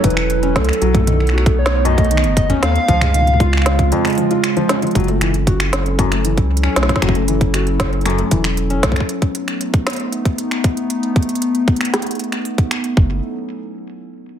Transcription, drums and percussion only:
0.04 kick, closed hi-hat
0.10 closed hi-hat
0.17 finger snap
0.30 closed hi-hat
0.43 closed hi-hat
0.56 kick, snare, closed hi-hat
0.64 closed hi-hat
0.69 finger snap
0.73 closed hi-hat
0.82 closed hi-hat
0.95 kick, closed hi-hat, mid tom
1.07 closed hi-hat, mid tom
1.20 finger snap
1.27 finger snap, closed hi-hat
1.38 finger snap
1.46 kick, closed hi-hat
1.66 snare, closed hi-hat
1.85 closed hi-hat
1.98 kick, closed hi-hat
2.04 closed hi-hat
2.11 closed hi-hat
2.17 finger snap, closed hi-hat
2.24 closed hi-hat
2.37 kick, closed hi-hat
2.50 closed hi-hat, mid tom
2.63 finger snap, snare, closed hi-hat
2.76 closed hi-hat
2.88 kick, closed hi-hat
3.01 finger snap, closed hi-hat, mid tom
3.14 closed hi-hat, mid tom
3.21 mid tom
3.27 closed hi-hat, mid tom
3.34 mid tom
3.40 kick, closed hi-hat
3.53 finger snap
3.57 finger snap
3.62 finger snap
3.66 snare, closed hi-hat
3.79 kick, closed hi-hat
3.92 closed hi-hat
4.05 finger snap, closed hi-hat
4.07 closed hi-hat
4.10 closed hi-hat
4.12 closed hi-hat
4.15 closed hi-hat
4.18 closed hi-hat
4.31 closed hi-hat
4.44 finger snap, closed hi-hat
4.57 closed hi-hat
4.69 snare, closed hi-hat
4.82 closed hi-hat
4.87 closed hi-hat
4.91 closed hi-hat
4.95 kick, closed hi-hat
5.00 closed hi-hat
5.04 closed hi-hat
5.08 closed hi-hat
5.21 finger snap, closed hi-hat
5.34 closed hi-hat
5.47 kick, closed hi-hat
5.60 finger snap, closed hi-hat
5.73 snare, closed hi-hat
5.86 closed hi-hat
5.99 kick, closed hi-hat
6.12 finger snap, closed hi-hat
6.25 closed hi-hat
6.37 kick, closed hi-hat
6.57 closed hi-hat
6.63 finger snap
6.76 snare, closed hi-hat
6.83 snare
6.89 kick, snare, closed hi-hat
6.96 kick, snare
7.02 finger snap, kick, closed hi-hat
7.09 kick
7.15 closed hi-hat
7.28 closed hi-hat
7.41 kick, closed hi-hat
7.54 finger snap, closed hi-hat
7.67 closed hi-hat
7.80 kick, snare, closed hi-hat
7.93 closed hi-hat
8.01 closed hi-hat
8.06 finger snap, closed hi-hat
8.18 closed hi-hat
8.31 kick, closed hi-hat
8.44 finger snap, closed hi-hat
8.57 closed hi-hat
8.70 closed hi-hat
8.83 kick, snare, closed hi-hat
8.92 kick
8.96 finger snap, closed hi-hat
9.00 kick
9.09 closed hi-hat
9.22 kick, closed hi-hat
9.35 closed hi-hat
9.48 finger snap, closed hi-hat
9.61 closed hi-hat
9.74 kick, closed hi-hat
9.87 finger snap, snare, closed hi-hat
9.90 closed hi-hat
9.93 closed hi-hat
9.96 closed hi-hat
10.00 closed hi-hat
10.12 closed hi-hat
10.25 kick, closed hi-hat
10.38 closed hi-hat
10.51 finger snap, closed hi-hat
10.64 kick, closed hi-hat
10.77 closed hi-hat
10.90 closed hi-hat
11.03 closed hi-hat
11.16 kick, closed hi-hat
11.22 closed hi-hat
11.29 closed hi-hat
11.35 closed hi-hat
11.42 closed hi-hat
11.55 closed hi-hat
11.68 kick, closed hi-hat
11.76 closed hi-hat
11.81 finger snap, closed hi-hat
11.85 closed hi-hat
11.94 snare, closed hi-hat
12.02 closed hi-hat
12.07 closed hi-hat
12.11 closed hi-hat
12.15 closed hi-hat
12.19 closed hi-hat
12.24 closed hi-hat
12.32 finger snap, closed hi-hat
12.45 closed hi-hat
12.58 kick, closed hi-hat
12.71 finger snap, closed hi-hat
12.84 closed hi-hat
12.97 kick

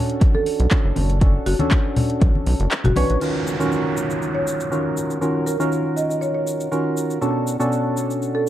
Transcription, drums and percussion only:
0.10 closed hi-hat
0.21 kick, closed hi-hat
0.34 high conga
0.46 open hi-hat
0.60 closed hi-hat
0.71 kick, clap, closed hi-hat
0.96 open hi-hat, high conga
1.10 closed hi-hat
1.21 kick, closed hi-hat
1.46 open hi-hat
1.59 closed hi-hat, high conga
1.71 kick, clap, closed hi-hat
1.96 open hi-hat, low conga
2.10 closed hi-hat
2.21 kick, closed hi-hat
2.35 high conga
2.46 open hi-hat
2.60 closed hi-hat
2.71 clap, closed hi-hat
2.84 closed hi-hat, low conga
2.96 open hi-hat, high conga
3.10 closed hi-hat
3.21 crash, shaker
3.47 shaker
3.60 shaker
3.72 shaker
3.97 shaker
4.10 shaker
4.22 shaker
4.47 shaker
4.60 shaker
4.72 shaker
4.97 shaker
5.10 shaker
5.22 shaker
5.47 shaker
5.60 shaker
5.72 shaker
5.97 shaker
6.10 shaker
6.22 shaker
6.47 shaker
6.60 shaker
6.72 shaker
6.97 shaker
7.10 shaker
7.22 shaker
7.47 shaker
7.60 shaker
7.72 shaker
7.97 shaker
8.10 shaker
8.22 shaker

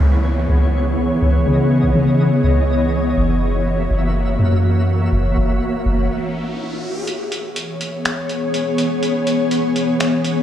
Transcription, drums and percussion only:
7.07 closed hi-hat
7.32 closed hi-hat
7.56 closed hi-hat
7.81 closed hi-hat
8.05 finger snap, closed hi-hat
8.29 closed hi-hat
8.54 closed hi-hat
8.78 closed hi-hat
9.03 closed hi-hat
9.27 closed hi-hat
9.51 closed hi-hat
9.76 closed hi-hat
10.00 finger snap, closed hi-hat
10.24 closed hi-hat

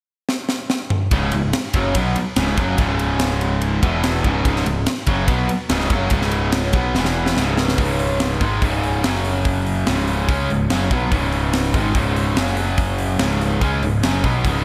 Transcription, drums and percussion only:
0.29 snare
0.49 snare
0.70 snare
0.90 mid tom
1.11 kick, ride
1.32 ride
1.53 snare, ride
1.73 kick, ride
1.95 kick, ride
2.16 ride
2.36 snare, ride
2.57 kick, ride
2.78 kick, ride
2.99 ride
3.19 snare, ride
3.41 ride
3.62 ride
3.83 kick, ride
4.04 snare, ride
4.24 kick, ride
4.45 kick, ride
4.56 snare
4.66 ride
4.86 snare, ride
5.06 kick, ride
5.28 kick, ride
5.49 ride
5.69 snare, ride
5.80 snare
5.90 kick, ride
6.10 kick, ride
6.21 snare
6.31 ride
6.52 snare, ride
6.73 kick, ride
6.95 snare
7.05 snare
7.26 snare
7.37 snare
7.58 snare
7.68 snare
7.78 kick, open hi-hat
7.99 open hi-hat
8.20 snare, open hi-hat
8.41 kick, open hi-hat
8.62 kick, open hi-hat
8.83 open hi-hat
9.04 snare, open hi-hat
9.25 open hi-hat
9.45 kick, open hi-hat
9.66 open hi-hat
9.87 snare, open hi-hat
10.08 open hi-hat
10.29 kick, open hi-hat
10.50 open hi-hat
10.70 snare, open hi-hat
10.91 kick, open hi-hat
11.12 kick, open hi-hat
11.32 open hi-hat
11.53 snare, open hi-hat
11.74 kick, open hi-hat
11.95 kick, open hi-hat
12.16 open hi-hat
12.37 snare, open hi-hat
12.57 open hi-hat
12.78 kick, open hi-hat
12.98 open hi-hat
13.19 snare, open hi-hat
13.41 open hi-hat
13.61 kick, open hi-hat
13.83 open hi-hat
14.03 snare, open hi-hat
14.24 kick, open hi-hat
14.45 kick, open hi-hat

